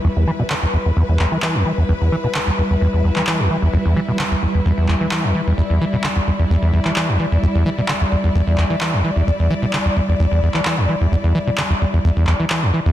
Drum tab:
CP |----x-----x-x---|----x------xx---|----x-----x-x---|----x------xx---|

CP |----x-----x-x---|----x------xx---|----x-----x-x---|